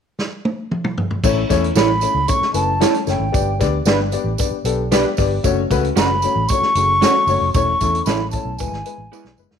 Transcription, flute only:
1.76 2.30 B5 loud
2.29 2.54 C#6 loud
2.55 3.04 A5 medium
3.09 3.58 G5 medium
5.98 6.50 B5 medium
6.49 7.53 C#6 loud
7.53 8.03 C#6 medium
8.05 8.30 B5 medium
8.31 8.60 A5 medium
8.58 9.38 G#5 medium

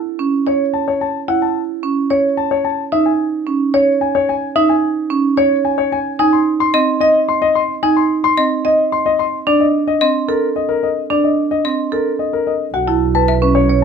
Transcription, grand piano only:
0.47 0.65 C#5 medium
0.74 0.92 A5 medium
0.88 1.05 C#5 medium
1.01 1.19 A5 medium
1.28 1.46 F#5 medium
1.42 1.60 A5 medium
2.11 2.28 C#5 medium
2.37 2.55 A5 medium
2.51 2.69 C#5 medium
2.65 2.82 A5 medium
2.92 3.10 E5 medium
3.06 3.23 G#5 soft
3.74 3.92 C#5 medium
4.01 4.19 G#5 medium
4.15 4.33 C#5 medium
4.29 4.46 G#5 medium
4.56 4.73 E5 medium
4.69 4.87 G#5 medium
5.38 5.55 C#5 medium
5.65 5.82 G#5 medium
5.78 5.96 C#5 medium
5.92 6.10 G#5 medium
6.19 6.37 G#5 medium
6.33 6.51 C6 medium
6.60 6.78 C6 medium
7.01 7.19 D#5 medium
7.29 7.46 C6 medium
7.42 7.60 D#5 medium
7.55 7.73 C6 medium
7.83 8.01 G#5 medium
7.97 8.14 C6 medium
8.24 8.42 C6 medium
8.65 8.83 D#5 medium
8.92 9.10 C6 medium
9.06 9.23 D#5 medium
9.19 9.37 C6 medium
9.47 9.65 D5 medium
9.60 9.78 D#5 medium
9.88 10.05 D#5 medium
10.28 10.46 A#4 medium
10.56 10.73 D#5 medium
10.69 10.87 A#4 medium
10.83 11.01 D#5 medium
11.10 11.28 D5 medium
11.24 11.42 D#5 soft
11.51 11.69 D#5 medium
11.93 12.10 A#4 medium
12.19 12.37 D#5 medium
12.33 12.51 A#4 medium
12.47 12.64 D#5 medium
12.74 12.92 F#5 medium
12.87 13.05 A5 soft
13.15 13.33 A5 medium
13.42 13.60 B4 medium
13.55 13.73 C#5 medium

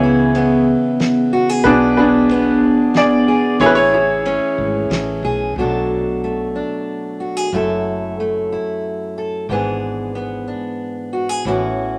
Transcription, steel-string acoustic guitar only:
0.00 1.61 C#3 medium
0.00 3.60 E3 medium
0.00 0.35 B3 medium
0.00 1.98 E4 medium
0.00 1.32 G#4 medium
0.36 1.62 B3 medium
1.33 1.49 F#4 medium
1.49 1.65 G#4 medium
1.65 3.60 B2 medium
1.65 3.27 G#4 medium
1.98 3.56 D4 medium
2.31 3.57 B3 medium
3.28 3.57 G#4 medium
3.61 5.57 E3 medium
3.61 4.25 C#4 medium
3.61 3.93 E4 medium
3.61 5.23 G#4 medium
3.94 5.53 E4 medium
4.26 5.53 C#4 medium
5.25 5.53 G#4 medium
5.58 7.53 B2 medium
5.58 7.50 F#3 soft
5.58 6.23 A3 soft
5.58 6.54 D4 soft
5.58 7.20 A4 medium
6.24 7.53 A3 soft
6.55 7.49 D4 soft
7.20 7.37 F#4 soft
7.37 7.53 G#4 soft
7.53 9.49 F#2 medium
7.53 9.45 F#3 soft
7.53 8.19 A3 medium
7.53 8.52 E4 soft
7.53 9.17 A4 medium
8.20 9.50 A3 soft
8.52 9.51 E4 soft
9.18 9.46 A4 soft
9.49 11.41 G#2 medium
9.49 11.45 E3 soft
9.49 10.14 B3 soft
9.49 10.46 D4 soft
9.49 11.12 G#4 medium
10.15 11.41 B3 soft
10.48 11.41 D4 soft
11.13 11.29 F#4 soft
11.29 11.45 G#4 soft
11.45 11.99 A2 medium
11.45 11.99 E3 soft
11.45 11.99 C#4 soft
11.45 11.99 E4 medium
11.45 11.99 F#4 medium

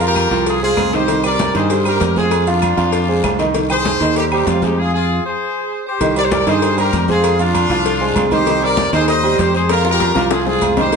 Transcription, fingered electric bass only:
0.00 0.25 F2 loud
0.31 0.74 C2 medium
0.77 1.49 C2 medium
1.54 1.97 G2 loud
2.01 2.72 F2 medium
2.77 3.20 F2 loud
3.23 3.95 C2 medium
4.00 4.44 D#2 loud
4.46 5.18 F2 medium
6.00 6.43 C2 medium
6.47 6.90 G2 loud
6.93 7.64 F2 loud
7.69 8.12 C2 loud
8.16 8.87 C2 loud
8.92 9.35 D#2 loud
9.39 10.10 F2 loud
10.15 10.58 C2 loud
10.61 10.96 C2 medium

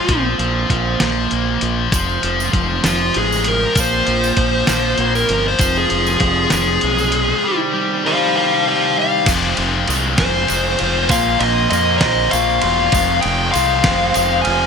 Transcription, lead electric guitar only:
0.00 0.25 F4 medium
2.86 3.15 F4 loud
3.18 3.47 G#4 medium
3.48 3.77 A#4 medium
3.80 5.12 C5 loud
5.15 5.45 A#4 medium
5.48 5.76 C5 medium
5.78 6.06 G#4 loud
6.10 6.53 G#4 medium
6.54 7.60 G#4 loud
8.06 8.35 C5 medium
8.06 8.36 F5 loud
8.36 8.64 C5 medium
8.36 8.66 F5 medium
8.68 8.95 C5 medium
8.68 8.97 F5 medium
8.99 9.28 F5 loud
10.19 11.13 C5 medium
11.10 11.42 F5 loud
11.39 11.69 D#5 medium
11.70 11.95 D#5 medium
11.98 12.03 C#5 medium
11.98 12.31 D#5 medium
12.31 12.60 F5 medium
12.62 13.21 F5 loud
13.21 13.51 G5 loud
13.52 14.40 F5 loud
14.42 14.67 G#5 loud

